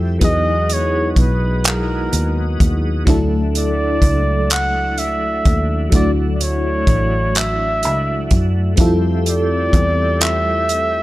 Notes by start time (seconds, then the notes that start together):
Already playing: F2 G3 A3 C4 E4 F4 G4 A4 E5
0.19 E2 F#3 G#3 B3 D#4 E4 F#4 D#5, kick, closed hi-hat
0.24 G#4 D#5
0.69 closed hi-hat
0.74 C#5
1.12 C#5
1.16 B1 B4, kick, closed hi-hat
1.64 A#4, clap, closed hi-hat
2.13 D#2, closed hi-hat
2.60 D#2, kick, closed hi-hat
3.05 D2 F#3 A3 D4 E4, kick, closed hi-hat
3.10 A4
3.55 D5, closed hi-hat
4.02 C#2, kick, closed hi-hat
4.50 F#5, clap, closed hi-hat
4.97 E5, closed hi-hat
5.45 D#2, kick, closed hi-hat
5.90 D2 F#3 A3 D4, kick, closed hi-hat
5.94 E4 F#4 D5
6.35 D5
6.41 C#5, closed hi-hat
6.87 A1, kick, closed hi-hat
7.35 E5, clap, closed hi-hat
7.83 C#2, closed hi-hat
8.30 F#2, kick, closed hi-hat
8.76 F2 G3 C4 E4 G4 E5, kick, closed hi-hat
8.80 F4 A4
9.26 D5, closed hi-hat
9.73 E2, kick, closed hi-hat
10.21 E5, clap, closed hi-hat
10.69 closed hi-hat